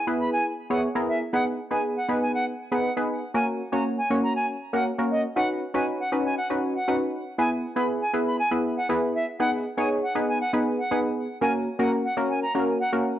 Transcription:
0.07 B3 E4 G#4 B4
0.20 B5
0.32 G#5
0.70 B3 E4 G#4 C#5 F#5
0.95 B3 E4 G#4 A#4
1.08 E5
1.33 B3 D#4 G#4 B4 F#5
1.71 B3 D#4 G#4 B4 G#5
1.96 F#5
2.09 B3 D#4 G#4 B4
2.22 G#5
2.34 F#5
2.72 B3 D#4 G#4 B4 F#5
2.97 B3 D#4 G#4 B4
3.35 A#3 C#4 F#4 A#4 G#5
3.72 A#3 C#4 F#4 C#5 A#5
3.98 G#5
4.10 A#3 C#4 F#4 C#5
4.23 A#5
4.36 G#5
4.73 A#3 C#4 F#4 A#4 F#5
4.99 A#3 C#4 F#4 A#4
5.11 D#5
5.36 C#4 D#4 F#4 B4 F#5
5.74 C#4 D#4 F#4 B4 G#5
6.00 F#5
6.12 C#4 D#4 F#4 B4
6.25 G#5
6.37 F#5
6.50 C#4 D#4 F#4 B4
6.75 F#5
6.88 C#4 D#4 F#4 B4
7.38 B3 E4 G#4 B4 G#5
7.76 B3 E4 G#4 B4 B5
8.01 G#5
8.13 B3 E4 G#4 B4
8.26 B5
8.39 G#5
8.51 B3 E4 G#4 B4
8.77 F#5
8.89 B3 E4 G#4 B4
9.15 E5
9.40 B3 D#4 G#4 B4 F#5
9.78 B3 D#4 G#4 C#5 G#5
10.03 F#5
10.15 B3 D#4 G#4 B4
10.28 G#5
10.41 F#5
10.53 B3 D#4 G#4 B4
10.79 F#5
10.91 B3 D#4 G#4 B4
11.41 A#3 C#4 F#4 A#4 G#5
11.79 A#3 C#4 F#4 A#4 F#5
12.05 F#5
12.17 A#3 C#4 F#4 A#4
12.30 G#5
12.42 A#5
12.55 A#3 C#4 F#4 A#4
12.80 F#5
12.93 A#3 C#4 F#4 A#4

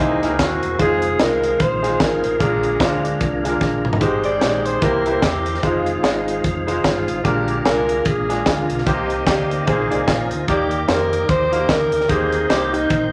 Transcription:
Already playing: E3 C4 D#4
0.00 C2 C3 A#3 E4 G#4 C5
0.22 C#2 A#3 E4 G#4 A#4, snare, closed hi-hat
0.39 D#2 F#4, kick, snare, closed hi-hat
0.63 E1, closed hi-hat
0.78 F1 D#3 G#3 C4 D#4 E4 F4 G#4 C5, kick, closed hi-hat
0.84 F4
1.02 closed hi-hat
1.19 C2 G#3 D#4 F4 A#4 D#5, snare, closed hi-hat
1.44 closed hi-hat
1.60 A#1 C5, kick, closed hi-hat
1.82 G#3 D#4 F4 G#4, snare, closed hi-hat
2.00 G#1 A#4, kick, snare, closed hi-hat
2.24 A1, closed hi-hat
2.40 A#1 A#2 C#3 G#3 A#3 D4 F4 G#4 A#4, kick, closed hi-hat
2.45 D3
2.63 closed hi-hat
2.79 G#3 D4 F4 C5, kick, snare, closed hi-hat
3.04 D4, closed hi-hat
3.20 C2, kick, closed hi-hat
3.44 G#3 D4 F4 G#4, snare, closed hi-hat
3.50 A#4
3.61 A#1, kick, snare
3.84 G1, mid tom
3.93 floor tom
4.00 G#1 G#2 D#3 G#3 B3 D#4 G4 C5, kick, closed hi-hat
4.05 C4
4.24 D5, closed hi-hat
4.41 A#1 G#3 D#4 G4 C#5, snare, closed hi-hat
4.47 D5
4.65 C5, closed hi-hat
4.81 C2 C3 E3 A#3 C4 E4 G4 A#4 C5, kick, closed hi-hat
5.06 A#3 E4 G4 B4, closed hi-hat
5.12 C5
5.22 E2 G4, kick, snare, closed hi-hat
5.46 closed hi-hat
5.55 snare
5.63 F1 D#3 G#3 C4 D#4 F4 C5, kick, closed hi-hat
5.86 closed hi-hat
6.03 G#1 G#3 D#4 F4 D#5, snare, closed hi-hat
6.28 closed hi-hat
6.44 F1, kick, closed hi-hat
6.67 G#3 D#4 F4 C5, snare, closed hi-hat
6.84 G1 F4, kick, snare, closed hi-hat
7.08 A1, closed hi-hat
7.24 A#1 A#2 D3 G#3 A#3 D4 F4 G4 A#4, kick, closed hi-hat
7.48 closed hi-hat
7.64 C2 G#3 C4 F4 G#4 A#4, snare, closed hi-hat
7.70 D4
7.89 closed hi-hat
8.05 A#1 G#4, kick, closed hi-hat
8.29 G#3 D4 F4 G#4, snare, closed hi-hat
8.46 D2 F4, kick, snare, closed hi-hat
8.70 B1, closed hi-hat
8.78 snare
8.86 C2 C3 D3 A#3 C4 D#4 G4 C5, kick, closed hi-hat
8.91 D#4
9.10 closed hi-hat
9.26 D2 A#3 D#4 G4 D5, kick, snare, closed hi-hat
9.51 closed hi-hat
9.67 A#1 A#2 D#3 A#3 C4 D#4 G#4 C5, kick, closed hi-hat
9.90 C2 A#3 D#4 G#4 D5, closed hi-hat
10.07 A#1 F4, kick, snare, closed hi-hat
10.31 D2, closed hi-hat
10.48 D#2 D#3 A#3 D#4 G4 D5, kick, closed hi-hat
10.71 closed hi-hat
10.88 F2 A#3 D#4 G4 A#4 C5, snare, closed hi-hat
11.13 closed hi-hat
11.29 D#2 C5, kick, closed hi-hat
11.52 A#3 D#4 F#4 F5, closed hi-hat
11.57 G4
11.69 D2 A#4, kick, snare, closed hi-hat
11.92 D2, closed hi-hat
12.01 snare
12.08 D#2 D#3 A#3 C4 D#4 G4 G#4 C5 G5, kick, closed hi-hat
12.32 closed hi-hat
12.49 C2 A#3 D#4 G4 C5, snare, closed hi-hat
12.73 D#4, closed hi-hat
12.90 A#1, kick, closed hi-hat

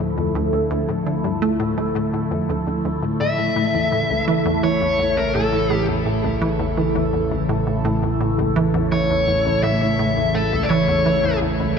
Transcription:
Already playing: D2 D3 F3 A3 E4 A4
0.17 F2
0.35 D2
0.53 D2
0.71 D2
0.89 A2
1.06 D3
1.24 G2
1.42 A3
1.60 A2
1.78 A3
1.95 A2
2.13 A2
2.31 F2
2.49 D2
2.67 D2
2.85 D2
3.03 A2
3.20 A1 A2 C#3 E3 E5
3.39 A2
3.56 A2
3.74 E2
3.92 A2
4.10 C#2
4.28 E3
4.45 E2
4.63 E3 C#5
4.81 E2
4.99 E2
5.17 C#2 A#4
5.35 A2 A4
5.53 A2
5.70 A2
5.88 E2
6.06 A2
6.24 C#2
6.42 E3
6.59 E2
6.78 E3
6.95 E2
7.13 E2
7.31 C#2
7.49 A2
7.67 A2
7.85 A2
8.03 E2
8.21 A2
8.38 C#2
8.56 E3
8.74 E2
8.92 E3 C#5
9.10 E2
9.28 E2
9.46 C#2
9.63 A2 E5
9.81 A2
9.99 A2
10.17 E2
10.35 A2 A4
10.53 C#2
10.63 D5
10.70 E3 C#5
10.88 E2
11.06 E3
11.24 E2
11.42 E2
11.60 C#2

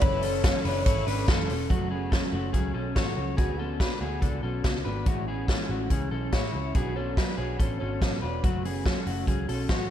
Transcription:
Already playing: F#5
0.00 F#1 F#2 C#3 E3 A3 C#4 E4 A4 B4 C#5 E5 C#6, kick, hi-hat pedal, ride
0.21 E3 A3 C#4 A4, open hi-hat
0.42 F#2 C#3 E3 A3 C#4 A4 C#5, kick, snare, hi-hat pedal, ride
0.64 F#1 E3 A3 C#4 D4 B4, open hi-hat
0.68 C#5
0.85 G#1 C#3 E3 A3 C#4 E4 C#5, kick, hi-hat pedal, ride
1.06 G#1 E3 A3 C#4 D4 B4, open hi-hat
1.27 F#1 F#2 C#3 E3 A3 C#4 A4, kick, snare, hi-hat pedal, ride
1.49 E1 E3 A3 C#4, open hi-hat
1.69 F#1 F#2 C#3 F#3 A3 C#4 F#4, kick, closed hi-hat
1.90 F#3 A3 B3 C#4 G#4
2.11 F#2 C#3 F#3 A3 C#4 A4, kick, snare, closed hi-hat
2.32 F#1 F#3 A3 C#4 F#4
2.53 C#2 C#3 F#3 A3 C#4 G#4, kick, closed hi-hat
2.74 B1 F#3 A3 C#4 A4
2.95 A1 F#2 C#3 F#3 A3 C#4 F#4 C#5, kick, snare, closed hi-hat
3.16 C#2 F#3 A3 C#4
3.36 D2 D3 A3 B3 F#4 G#4, kick, closed hi-hat
3.58 A3 B3 C#4 F#4 A4
3.79 D3 A3 B3 D4 F#4 B4, kick, snare, closed hi-hat
4.00 D2 A3 B3 F#4 G#4
4.21 C#2 D3 A3 B3 D4 F#4 A4, kick, closed hi-hat
4.42 B1 A3 B3 C#4 F#4 A4
4.63 C#2 D3 A3 B3 F#4, kick, snare, closed hi-hat
4.84 G#1 A3 B3 D4 F#4 B4
5.06 A1 A2 E3 G#3 A3 C#4 E4 F#4, kick, closed hi-hat
5.26 G#3 B3 C#4 E4 G#4
5.48 A2 E3 G#3 C#4 E4 A4, kick, snare, closed hi-hat
5.69 A1 G#3 A3 C#4 E4 F#4
5.89 C#2 E3 G#3 C#4 E4 G#4, kick, closed hi-hat
6.10 B1 G#3 C#4 E4 A4
6.32 A1 A2 E3 G#3 C#4 E4 C#5, kick, snare, closed hi-hat
6.53 C#2 G#3 C#4 E4
6.75 B1 B2 F#3 B3 D4 F#4 G#4 C#5, kick, closed hi-hat
6.95 B3 C#4 D4 F#4 A4 C#5
7.17 B2 F#3 B3 D4 F#4 B4 C#5, kick, snare, closed hi-hat
7.37 B1 B3 D4 F#4 G#4 C#5
7.59 A1 B3 C#4 D4 F#4 A4 C#5, kick, closed hi-hat
7.79 G#1 B3 C#4 D4 F#4 A4 C#5
7.99 A1 B2 F#3 B3 D4 F#4 C#5, kick, snare, closed hi-hat
8.21 E1 B3 D4 F#4 B4 C#5
8.42 F#1 F#3 A3 C#4 F#4, kick, closed hi-hat
8.63 A3 B3 C#4 F#4 G#4, open hi-hat
8.84 F#3 A3 C#4 F#4 A4, kick, snare, closed hi-hat
9.05 F#1 A3 C#4 F#4, open hi-hat
9.25 C#2 F#3 A3 C#4 G#4, kick, closed hi-hat
9.29 C#4 F#4
9.47 B1 A3 C#4 F#4 A4, open hi-hat
9.69 A1 F#3 A3 C#4 F#4 C#5, kick, snare, closed hi-hat

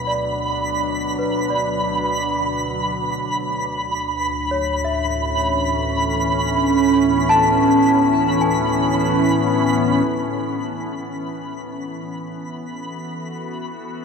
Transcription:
Already playing: D2 B2 F#3 D4 B4 E5 B5
0.07 D5
1.19 B4
1.50 D5
4.12 A2
4.51 C#5
4.72 E3
4.79 C#4
4.84 E5
5.60 B3
7.29 A5
8.41 G#5
10.08 B5
12.24 A4
12.36 F#4

